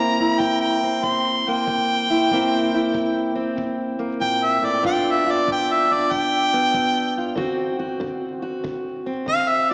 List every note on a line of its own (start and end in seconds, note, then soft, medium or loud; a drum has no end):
0.00 0.37 C3 medium
0.00 1.47 A#3 medium
0.00 0.83 C4 medium
0.00 0.20 E4 medium
0.00 0.41 A#5 loud
0.20 2.09 E4 medium
0.40 0.99 C3 medium
0.40 0.60 G5 loud
0.40 kick medium
0.61 1.06 G5 medium
0.83 2.29 C4 medium
1.03 1.63 C3 medium
1.03 1.51 C6 medium
1.03 kick medium
1.48 2.29 A#3 medium
1.48 3.34 G5 loud
1.67 2.26 C3 medium
1.67 kick medium
2.10 2.31 E4 medium
2.31 2.90 C3 medium
2.31 3.98 A#3 medium
2.31 3.34 C4 medium
2.31 2.73 E4 medium
2.31 kick medium
2.74 4.85 E4 medium
2.93 3.53 C3 medium
2.93 kick medium
3.35 4.81 C4 medium
3.57 4.17 C3 medium
3.57 kick medium
3.99 4.82 A#3 medium
4.20 4.62 A#2 medium
4.20 4.46 G5 loud
4.20 kick medium
4.45 4.67 E5 loud
4.62 4.84 A2 medium
4.62 4.85 D5 loud
4.83 5.43 G2 medium
4.83 6.52 B3 medium
4.83 5.90 D4 medium
4.83 5.25 F4 medium
4.83 5.13 G5 loud
4.83 kick medium
5.12 5.33 E5 medium
5.27 7.16 F4 medium
5.31 5.49 D5 loud
5.47 6.07 G2 medium
5.47 kick medium
5.52 5.74 G5 loud
5.72 5.95 E5 medium
5.91 7.36 D4 medium
5.91 6.14 D5 loud
6.11 6.71 G2 medium
6.11 7.35 G5 loud
6.11 kick medium
6.54 7.35 B3 medium
6.74 7.33 G2 medium
6.74 kick medium
7.18 7.36 F4 medium
7.35 7.96 D3 medium
7.35 9.06 C4 medium
7.35 7.79 F#4 medium
7.35 kick medium
7.79 8.42 F#4 medium
8.00 8.60 D3 medium
8.00 kick medium
8.42 9.69 F#4 medium
8.64 9.23 D3 medium
8.64 kick medium
9.06 9.74 C4 medium
9.26 9.74 D3 medium
9.26 9.50 F5 loud
9.26 kick medium
9.49 9.73 E5 medium